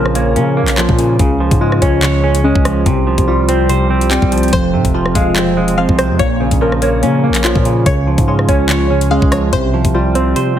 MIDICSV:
0, 0, Header, 1, 6, 480
1, 0, Start_track
1, 0, Tempo, 416667
1, 1375, Time_signature, 4, 2, 24, 8
1, 12201, End_track
2, 0, Start_track
2, 0, Title_t, "Synth pluck"
2, 0, Program_c, 0, 84
2, 5215, Note_on_c, 0, 72, 113
2, 5667, Note_off_c, 0, 72, 0
2, 6654, Note_on_c, 0, 77, 86
2, 6883, Note_off_c, 0, 77, 0
2, 6894, Note_on_c, 0, 72, 82
2, 7123, Note_off_c, 0, 72, 0
2, 7135, Note_on_c, 0, 73, 111
2, 7587, Note_off_c, 0, 73, 0
2, 9056, Note_on_c, 0, 73, 99
2, 9507, Note_off_c, 0, 73, 0
2, 10493, Note_on_c, 0, 77, 88
2, 10722, Note_off_c, 0, 77, 0
2, 10735, Note_on_c, 0, 73, 73
2, 10963, Note_off_c, 0, 73, 0
2, 10977, Note_on_c, 0, 72, 116
2, 11427, Note_off_c, 0, 72, 0
2, 12201, End_track
3, 0, Start_track
3, 0, Title_t, "Synth keys"
3, 0, Program_c, 1, 88
3, 0, Note_on_c, 1, 58, 82
3, 0, Note_on_c, 1, 70, 98
3, 180, Note_on_c, 1, 73, 89
3, 403, Note_off_c, 1, 58, 0
3, 417, Note_on_c, 1, 58, 91
3, 642, Note_off_c, 1, 58, 0
3, 655, Note_on_c, 1, 58, 82
3, 896, Note_on_c, 1, 65, 83
3, 1376, Note_off_c, 1, 58, 0
3, 1376, Note_off_c, 1, 65, 0
3, 1377, Note_on_c, 1, 49, 95
3, 1378, Note_off_c, 1, 73, 0
3, 1380, Note_off_c, 1, 70, 0
3, 1602, Note_off_c, 1, 49, 0
3, 1615, Note_on_c, 1, 49, 81
3, 1854, Note_on_c, 1, 65, 93
3, 2096, Note_on_c, 1, 73, 93
3, 2311, Note_off_c, 1, 49, 0
3, 2325, Note_on_c, 1, 49, 83
3, 2566, Note_off_c, 1, 49, 0
3, 2579, Note_on_c, 1, 49, 78
3, 2809, Note_on_c, 1, 61, 92
3, 3293, Note_off_c, 1, 61, 0
3, 3295, Note_off_c, 1, 65, 0
3, 3296, Note_off_c, 1, 73, 0
3, 3297, Note_on_c, 1, 48, 96
3, 3298, Note_off_c, 1, 49, 0
3, 3516, Note_off_c, 1, 48, 0
3, 3530, Note_on_c, 1, 48, 86
3, 3779, Note_on_c, 1, 65, 92
3, 4014, Note_on_c, 1, 72, 86
3, 4238, Note_off_c, 1, 48, 0
3, 4252, Note_on_c, 1, 48, 87
3, 4483, Note_off_c, 1, 48, 0
3, 4497, Note_on_c, 1, 48, 85
3, 4736, Note_on_c, 1, 60, 92
3, 5215, Note_off_c, 1, 72, 0
3, 5216, Note_off_c, 1, 48, 0
3, 5216, Note_off_c, 1, 60, 0
3, 5217, Note_off_c, 1, 65, 0
3, 5220, Note_on_c, 1, 53, 93
3, 5441, Note_off_c, 1, 53, 0
3, 5455, Note_on_c, 1, 53, 76
3, 5697, Note_on_c, 1, 65, 92
3, 5945, Note_on_c, 1, 77, 91
3, 6162, Note_off_c, 1, 53, 0
3, 6176, Note_on_c, 1, 53, 87
3, 6404, Note_off_c, 1, 53, 0
3, 6418, Note_on_c, 1, 53, 77
3, 6660, Note_on_c, 1, 60, 83
3, 7130, Note_on_c, 1, 58, 100
3, 7137, Note_off_c, 1, 53, 0
3, 7137, Note_off_c, 1, 65, 0
3, 7138, Note_off_c, 1, 60, 0
3, 7140, Note_off_c, 1, 77, 0
3, 7367, Note_off_c, 1, 58, 0
3, 7381, Note_on_c, 1, 58, 82
3, 7624, Note_on_c, 1, 70, 98
3, 7860, Note_on_c, 1, 73, 93
3, 8083, Note_off_c, 1, 58, 0
3, 8097, Note_on_c, 1, 58, 94
3, 8322, Note_off_c, 1, 58, 0
3, 8336, Note_on_c, 1, 58, 82
3, 8575, Note_on_c, 1, 65, 86
3, 9056, Note_off_c, 1, 58, 0
3, 9056, Note_off_c, 1, 65, 0
3, 9057, Note_on_c, 1, 49, 100
3, 9058, Note_off_c, 1, 73, 0
3, 9060, Note_off_c, 1, 70, 0
3, 9282, Note_off_c, 1, 49, 0
3, 9296, Note_on_c, 1, 49, 81
3, 9534, Note_on_c, 1, 65, 95
3, 9776, Note_on_c, 1, 73, 93
3, 9992, Note_off_c, 1, 49, 0
3, 10005, Note_on_c, 1, 49, 83
3, 10245, Note_off_c, 1, 49, 0
3, 10259, Note_on_c, 1, 49, 78
3, 10489, Note_on_c, 1, 61, 89
3, 10973, Note_off_c, 1, 61, 0
3, 10975, Note_off_c, 1, 65, 0
3, 10976, Note_off_c, 1, 73, 0
3, 10978, Note_off_c, 1, 49, 0
3, 10978, Note_on_c, 1, 48, 94
3, 11197, Note_off_c, 1, 48, 0
3, 11211, Note_on_c, 1, 48, 83
3, 11459, Note_on_c, 1, 65, 91
3, 11693, Note_on_c, 1, 72, 89
3, 11917, Note_off_c, 1, 48, 0
3, 11931, Note_on_c, 1, 48, 87
3, 12162, Note_off_c, 1, 48, 0
3, 12201, Note_off_c, 1, 65, 0
3, 12201, Note_off_c, 1, 72, 0
3, 12201, End_track
4, 0, Start_track
4, 0, Title_t, "Clean electric guitar"
4, 0, Program_c, 2, 27
4, 0, Note_on_c, 2, 46, 99
4, 0, Note_on_c, 2, 49, 84
4, 0, Note_on_c, 2, 53, 84
4, 175, Note_on_c, 2, 58, 98
4, 415, Note_on_c, 2, 61, 88
4, 643, Note_off_c, 2, 58, 0
4, 656, Note_off_c, 2, 46, 0
4, 657, Note_on_c, 2, 58, 80
4, 883, Note_off_c, 2, 53, 0
4, 896, Note_off_c, 2, 49, 0
4, 896, Note_on_c, 2, 53, 98
4, 1136, Note_on_c, 2, 49, 72
4, 1363, Note_off_c, 2, 49, 0
4, 1375, Note_off_c, 2, 61, 0
4, 1376, Note_off_c, 2, 53, 0
4, 1377, Note_off_c, 2, 58, 0
4, 1377, Note_on_c, 2, 49, 97
4, 1617, Note_on_c, 2, 53, 75
4, 1856, Note_on_c, 2, 56, 81
4, 2096, Note_on_c, 2, 61, 99
4, 2336, Note_on_c, 2, 73, 83
4, 2563, Note_off_c, 2, 61, 0
4, 2576, Note_off_c, 2, 49, 0
4, 2576, Note_on_c, 2, 61, 83
4, 2803, Note_off_c, 2, 56, 0
4, 2816, Note_off_c, 2, 53, 0
4, 2817, Note_on_c, 2, 56, 93
4, 3057, Note_on_c, 2, 53, 83
4, 3296, Note_off_c, 2, 53, 0
4, 3296, Note_off_c, 2, 56, 0
4, 3296, Note_off_c, 2, 61, 0
4, 3296, Note_off_c, 2, 73, 0
4, 3296, Note_on_c, 2, 48, 91
4, 3537, Note_on_c, 2, 53, 77
4, 3776, Note_on_c, 2, 55, 85
4, 4016, Note_on_c, 2, 60, 98
4, 4258, Note_on_c, 2, 72, 87
4, 4482, Note_off_c, 2, 60, 0
4, 4496, Note_off_c, 2, 48, 0
4, 4496, Note_on_c, 2, 60, 80
4, 4723, Note_off_c, 2, 55, 0
4, 4736, Note_off_c, 2, 53, 0
4, 4737, Note_on_c, 2, 55, 96
4, 4977, Note_on_c, 2, 53, 78
4, 5216, Note_off_c, 2, 53, 0
4, 5216, Note_off_c, 2, 55, 0
4, 5216, Note_off_c, 2, 60, 0
4, 5216, Note_on_c, 2, 41, 89
4, 5217, Note_off_c, 2, 72, 0
4, 5456, Note_on_c, 2, 48, 79
4, 5696, Note_on_c, 2, 53, 82
4, 5936, Note_on_c, 2, 56, 94
4, 6176, Note_on_c, 2, 60, 91
4, 6402, Note_off_c, 2, 56, 0
4, 6416, Note_off_c, 2, 41, 0
4, 6416, Note_on_c, 2, 56, 80
4, 6642, Note_off_c, 2, 53, 0
4, 6656, Note_off_c, 2, 48, 0
4, 6656, Note_on_c, 2, 53, 88
4, 6896, Note_on_c, 2, 48, 75
4, 7136, Note_off_c, 2, 48, 0
4, 7136, Note_off_c, 2, 53, 0
4, 7136, Note_off_c, 2, 56, 0
4, 7136, Note_off_c, 2, 60, 0
4, 7136, Note_on_c, 2, 46, 95
4, 7376, Note_on_c, 2, 49, 85
4, 7616, Note_on_c, 2, 53, 83
4, 7856, Note_on_c, 2, 58, 98
4, 8096, Note_on_c, 2, 61, 90
4, 8323, Note_off_c, 2, 58, 0
4, 8336, Note_off_c, 2, 46, 0
4, 8337, Note_on_c, 2, 58, 77
4, 8562, Note_off_c, 2, 53, 0
4, 8576, Note_off_c, 2, 49, 0
4, 8576, Note_on_c, 2, 53, 97
4, 8817, Note_on_c, 2, 49, 72
4, 9044, Note_off_c, 2, 49, 0
4, 9056, Note_off_c, 2, 53, 0
4, 9056, Note_off_c, 2, 58, 0
4, 9056, Note_off_c, 2, 61, 0
4, 9058, Note_on_c, 2, 49, 98
4, 9298, Note_on_c, 2, 53, 75
4, 9538, Note_on_c, 2, 56, 80
4, 9777, Note_on_c, 2, 61, 101
4, 10018, Note_on_c, 2, 73, 84
4, 10243, Note_off_c, 2, 61, 0
4, 10257, Note_off_c, 2, 49, 0
4, 10257, Note_on_c, 2, 61, 82
4, 10483, Note_off_c, 2, 56, 0
4, 10497, Note_off_c, 2, 53, 0
4, 10497, Note_on_c, 2, 56, 94
4, 10736, Note_on_c, 2, 53, 79
4, 10976, Note_off_c, 2, 53, 0
4, 10976, Note_off_c, 2, 56, 0
4, 10976, Note_off_c, 2, 61, 0
4, 10977, Note_off_c, 2, 73, 0
4, 10978, Note_on_c, 2, 48, 88
4, 11217, Note_on_c, 2, 53, 79
4, 11457, Note_on_c, 2, 55, 81
4, 11696, Note_on_c, 2, 60, 95
4, 11935, Note_on_c, 2, 72, 85
4, 12162, Note_off_c, 2, 60, 0
4, 12177, Note_off_c, 2, 48, 0
4, 12201, Note_off_c, 2, 53, 0
4, 12201, Note_off_c, 2, 55, 0
4, 12201, Note_off_c, 2, 72, 0
4, 12201, End_track
5, 0, Start_track
5, 0, Title_t, "808-style bass"
5, 0, Program_c, 3, 38
5, 0, Note_on_c, 3, 34, 110
5, 416, Note_on_c, 3, 49, 101
5, 433, Note_off_c, 3, 34, 0
5, 720, Note_on_c, 3, 34, 105
5, 737, Note_off_c, 3, 49, 0
5, 1008, Note_off_c, 3, 34, 0
5, 1023, Note_on_c, 3, 46, 102
5, 1362, Note_off_c, 3, 46, 0
5, 1376, Note_on_c, 3, 37, 115
5, 1728, Note_off_c, 3, 37, 0
5, 1744, Note_on_c, 3, 44, 109
5, 2082, Note_off_c, 3, 44, 0
5, 2096, Note_on_c, 3, 37, 104
5, 2909, Note_off_c, 3, 37, 0
5, 2943, Note_on_c, 3, 37, 106
5, 3282, Note_off_c, 3, 37, 0
5, 3295, Note_on_c, 3, 36, 115
5, 3648, Note_off_c, 3, 36, 0
5, 3663, Note_on_c, 3, 36, 107
5, 4817, Note_off_c, 3, 36, 0
5, 4864, Note_on_c, 3, 36, 101
5, 5202, Note_off_c, 3, 36, 0
5, 5217, Note_on_c, 3, 29, 108
5, 5456, Note_on_c, 3, 44, 98
5, 5473, Note_off_c, 3, 29, 0
5, 5577, Note_off_c, 3, 44, 0
5, 5583, Note_on_c, 3, 29, 105
5, 5922, Note_off_c, 3, 29, 0
5, 5936, Note_on_c, 3, 28, 101
5, 6749, Note_off_c, 3, 28, 0
5, 6783, Note_on_c, 3, 36, 106
5, 7023, Note_on_c, 3, 41, 102
5, 7040, Note_off_c, 3, 36, 0
5, 7130, Note_off_c, 3, 41, 0
5, 7136, Note_on_c, 3, 34, 118
5, 7489, Note_off_c, 3, 34, 0
5, 7503, Note_on_c, 3, 34, 110
5, 8096, Note_on_c, 3, 49, 99
5, 8113, Note_off_c, 3, 34, 0
5, 8399, Note_on_c, 3, 34, 104
5, 8416, Note_off_c, 3, 49, 0
5, 8688, Note_off_c, 3, 34, 0
5, 8703, Note_on_c, 3, 46, 101
5, 9042, Note_off_c, 3, 46, 0
5, 9056, Note_on_c, 3, 37, 117
5, 9408, Note_off_c, 3, 37, 0
5, 9424, Note_on_c, 3, 44, 109
5, 9762, Note_off_c, 3, 44, 0
5, 9776, Note_on_c, 3, 37, 100
5, 10589, Note_off_c, 3, 37, 0
5, 10623, Note_on_c, 3, 37, 102
5, 10962, Note_off_c, 3, 37, 0
5, 10976, Note_on_c, 3, 36, 112
5, 11328, Note_off_c, 3, 36, 0
5, 11343, Note_on_c, 3, 36, 105
5, 11912, Note_off_c, 3, 36, 0
5, 12201, End_track
6, 0, Start_track
6, 0, Title_t, "Drums"
6, 64, Note_on_c, 9, 37, 73
6, 176, Note_on_c, 9, 42, 90
6, 179, Note_off_c, 9, 37, 0
6, 291, Note_off_c, 9, 42, 0
6, 416, Note_on_c, 9, 42, 75
6, 531, Note_off_c, 9, 42, 0
6, 783, Note_on_c, 9, 39, 74
6, 783, Note_on_c, 9, 42, 87
6, 896, Note_off_c, 9, 39, 0
6, 896, Note_off_c, 9, 42, 0
6, 896, Note_on_c, 9, 39, 107
6, 896, Note_on_c, 9, 42, 82
6, 1011, Note_off_c, 9, 39, 0
6, 1011, Note_off_c, 9, 42, 0
6, 1023, Note_on_c, 9, 36, 106
6, 1136, Note_on_c, 9, 42, 72
6, 1138, Note_off_c, 9, 36, 0
6, 1251, Note_off_c, 9, 42, 0
6, 1376, Note_on_c, 9, 36, 126
6, 1376, Note_on_c, 9, 42, 81
6, 1491, Note_off_c, 9, 36, 0
6, 1491, Note_off_c, 9, 42, 0
6, 1743, Note_on_c, 9, 36, 96
6, 1743, Note_on_c, 9, 42, 75
6, 1858, Note_off_c, 9, 36, 0
6, 1859, Note_off_c, 9, 42, 0
6, 1984, Note_on_c, 9, 37, 73
6, 2095, Note_on_c, 9, 36, 96
6, 2096, Note_on_c, 9, 42, 87
6, 2099, Note_off_c, 9, 37, 0
6, 2211, Note_off_c, 9, 36, 0
6, 2211, Note_off_c, 9, 42, 0
6, 2335, Note_on_c, 9, 39, 115
6, 2336, Note_on_c, 9, 42, 77
6, 2451, Note_off_c, 9, 39, 0
6, 2451, Note_off_c, 9, 42, 0
6, 2703, Note_on_c, 9, 42, 88
6, 2818, Note_off_c, 9, 42, 0
6, 2943, Note_on_c, 9, 36, 106
6, 3055, Note_on_c, 9, 37, 101
6, 3056, Note_on_c, 9, 42, 71
6, 3058, Note_off_c, 9, 36, 0
6, 3171, Note_off_c, 9, 37, 0
6, 3171, Note_off_c, 9, 42, 0
6, 3295, Note_on_c, 9, 42, 82
6, 3296, Note_on_c, 9, 36, 122
6, 3410, Note_off_c, 9, 42, 0
6, 3411, Note_off_c, 9, 36, 0
6, 3663, Note_on_c, 9, 36, 97
6, 3663, Note_on_c, 9, 42, 76
6, 3778, Note_off_c, 9, 36, 0
6, 3778, Note_off_c, 9, 42, 0
6, 4016, Note_on_c, 9, 42, 87
6, 4131, Note_off_c, 9, 42, 0
6, 4256, Note_on_c, 9, 42, 77
6, 4371, Note_off_c, 9, 42, 0
6, 4624, Note_on_c, 9, 42, 88
6, 4737, Note_off_c, 9, 42, 0
6, 4737, Note_on_c, 9, 39, 106
6, 4737, Note_on_c, 9, 42, 82
6, 4852, Note_off_c, 9, 39, 0
6, 4852, Note_off_c, 9, 42, 0
6, 4864, Note_on_c, 9, 36, 106
6, 4977, Note_on_c, 9, 42, 74
6, 4979, Note_off_c, 9, 36, 0
6, 5041, Note_off_c, 9, 42, 0
6, 5041, Note_on_c, 9, 42, 63
6, 5105, Note_off_c, 9, 42, 0
6, 5105, Note_on_c, 9, 42, 52
6, 5161, Note_off_c, 9, 42, 0
6, 5161, Note_on_c, 9, 42, 41
6, 5217, Note_off_c, 9, 42, 0
6, 5217, Note_on_c, 9, 36, 119
6, 5217, Note_on_c, 9, 42, 81
6, 5332, Note_off_c, 9, 36, 0
6, 5332, Note_off_c, 9, 42, 0
6, 5584, Note_on_c, 9, 36, 96
6, 5584, Note_on_c, 9, 42, 74
6, 5699, Note_off_c, 9, 36, 0
6, 5699, Note_off_c, 9, 42, 0
6, 5825, Note_on_c, 9, 37, 75
6, 5936, Note_on_c, 9, 36, 98
6, 5937, Note_on_c, 9, 42, 88
6, 5940, Note_off_c, 9, 37, 0
6, 6051, Note_off_c, 9, 36, 0
6, 6052, Note_off_c, 9, 42, 0
6, 6176, Note_on_c, 9, 39, 117
6, 6176, Note_on_c, 9, 42, 79
6, 6291, Note_off_c, 9, 39, 0
6, 6292, Note_off_c, 9, 42, 0
6, 6543, Note_on_c, 9, 42, 89
6, 6658, Note_off_c, 9, 42, 0
6, 6783, Note_on_c, 9, 36, 103
6, 6896, Note_on_c, 9, 37, 99
6, 6896, Note_on_c, 9, 42, 72
6, 6898, Note_off_c, 9, 36, 0
6, 7011, Note_off_c, 9, 37, 0
6, 7011, Note_off_c, 9, 42, 0
6, 7136, Note_on_c, 9, 36, 120
6, 7136, Note_on_c, 9, 42, 80
6, 7251, Note_off_c, 9, 36, 0
6, 7251, Note_off_c, 9, 42, 0
6, 7503, Note_on_c, 9, 36, 92
6, 7503, Note_on_c, 9, 42, 76
6, 7618, Note_off_c, 9, 36, 0
6, 7618, Note_off_c, 9, 42, 0
6, 7745, Note_on_c, 9, 37, 71
6, 7856, Note_on_c, 9, 42, 85
6, 7860, Note_off_c, 9, 37, 0
6, 7971, Note_off_c, 9, 42, 0
6, 8096, Note_on_c, 9, 42, 78
6, 8211, Note_off_c, 9, 42, 0
6, 8463, Note_on_c, 9, 39, 73
6, 8463, Note_on_c, 9, 42, 91
6, 8576, Note_off_c, 9, 39, 0
6, 8576, Note_off_c, 9, 42, 0
6, 8576, Note_on_c, 9, 39, 105
6, 8576, Note_on_c, 9, 42, 82
6, 8691, Note_off_c, 9, 39, 0
6, 8691, Note_off_c, 9, 42, 0
6, 8703, Note_on_c, 9, 36, 103
6, 8816, Note_on_c, 9, 42, 74
6, 8818, Note_off_c, 9, 36, 0
6, 8932, Note_off_c, 9, 42, 0
6, 9056, Note_on_c, 9, 36, 124
6, 9056, Note_on_c, 9, 42, 82
6, 9171, Note_off_c, 9, 36, 0
6, 9172, Note_off_c, 9, 42, 0
6, 9423, Note_on_c, 9, 36, 92
6, 9424, Note_on_c, 9, 42, 74
6, 9539, Note_off_c, 9, 36, 0
6, 9539, Note_off_c, 9, 42, 0
6, 9664, Note_on_c, 9, 37, 73
6, 9776, Note_on_c, 9, 36, 98
6, 9776, Note_on_c, 9, 42, 87
6, 9779, Note_off_c, 9, 37, 0
6, 9891, Note_off_c, 9, 36, 0
6, 9891, Note_off_c, 9, 42, 0
6, 10015, Note_on_c, 9, 39, 121
6, 10016, Note_on_c, 9, 42, 78
6, 10131, Note_off_c, 9, 39, 0
6, 10131, Note_off_c, 9, 42, 0
6, 10383, Note_on_c, 9, 42, 85
6, 10498, Note_off_c, 9, 42, 0
6, 10623, Note_on_c, 9, 36, 103
6, 10735, Note_on_c, 9, 37, 103
6, 10735, Note_on_c, 9, 42, 69
6, 10738, Note_off_c, 9, 36, 0
6, 10850, Note_off_c, 9, 37, 0
6, 10851, Note_off_c, 9, 42, 0
6, 10976, Note_on_c, 9, 36, 120
6, 10976, Note_on_c, 9, 42, 80
6, 11091, Note_off_c, 9, 36, 0
6, 11091, Note_off_c, 9, 42, 0
6, 11343, Note_on_c, 9, 36, 97
6, 11343, Note_on_c, 9, 42, 75
6, 11458, Note_off_c, 9, 36, 0
6, 11458, Note_off_c, 9, 42, 0
6, 11696, Note_on_c, 9, 42, 85
6, 11811, Note_off_c, 9, 42, 0
6, 11936, Note_on_c, 9, 42, 78
6, 12051, Note_off_c, 9, 42, 0
6, 12201, End_track
0, 0, End_of_file